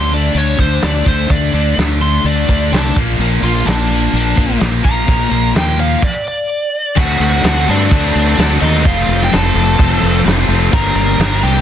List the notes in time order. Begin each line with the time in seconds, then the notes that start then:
Already playing: D2 D3 A3 D4 C6
0.10 D3 A3 D4 D5
0.34 D2 D3 A3 D4, open hi-hat
0.38 C#5
0.58 D2 D3 A3 D4 C5, kick
0.82 D2 D3 A3 D4 D5, snare, open hi-hat
1.06 D2 D3 A3 D4 C5, kick
1.29 D2 D3 A3 D4 D5, kick, open hi-hat
1.53 D2 D3 A3 D4
1.77 D2 D3 A3 D4, snare, open hi-hat
2.00 D3 A3 D4 C6
2.24 D2 D3 A3 D4 D5, open hi-hat
2.48 D2 D3 A3 D4 D5, kick
2.71 C2 D3 A3 D4, snare, open hi-hat
2.95 A#1 A#2 F3 A#3, kick
3.19 A#1 A#2 F3 A#3, open hi-hat
3.42 A#1 A#2 F3 A#3 F4
3.66 A#1 A#2 F3 A#3 D4, snare, open hi-hat
3.90 A#2 F3 A#3
4.13 A#1 A#2 F3 A#3, open hi-hat
4.37 A#1 A#2 F3 A#3, kick
4.60 A#1 A#2 F3 A#3, snare, open hi-hat
4.84 A#1 A#2 F3 A#3 A#5, kick
5.06 A#1 A#2 F3 A#3, kick, open hi-hat
5.31 A#1 A#2 F3 A#3
5.54 D#2 A#2 F3 A#3 G5, snare, open hi-hat
5.79 A#2 F3 A#3 F5
6.02 D5, kick, crash
6.28 D5
6.97 D2 D3 F#3 A3 C4 D4 F#4 A4 F#5, kick, crash
7.19 D2 A3 D4 F#4, crash
7.24 F#5
7.43 D2 D3 F#3 A3 C4 D4 F#4 A4 F#5, snare, crash
7.67 G2 A3 D4 F#4 A4 D5, crash
7.71 C4
7.91 D2 A3 C4 F#4 A4, kick, crash
8.15 D2, crash
8.36 D2 D3 F#3 A3 C4 D4 F#4, snare, crash
8.42 A4
8.60 D#2 A3 D4 D#4 F#4 A4 D#5, crash
8.65 C4
8.83 F1 F2 C3 F3 A3 C4 F4 A4 F5, kick, crash
9.06 F1 F3 A3 C4 F4, crash
9.21 G5, snare
9.30 F1 F3 A3 C4 F4 A4, snare, crash
9.34 A4 A5
9.53 F1 F3 A3 C4 F4 A4, crash
9.77 F1 A3 C4 F4 A4, kick, crash
10.03 F1, crash
10.25 F1 F2 C3 F3 A3 C4 F4 A4, snare, crash
10.47 F1 F3 A3 C4 F4 A4, crash
10.71 G1 G2 D3 G3 A#3 D4 A#4 A#5, kick, crash
10.75 A#4
10.95 G1 G3 A#3 D4 A#4 A#5, crash
11.19 G1 G2 D3 G3 A#3 D4 A#4, snare, crash
11.41 C2 G3 A#3 D4 G4 A#4 G5, crash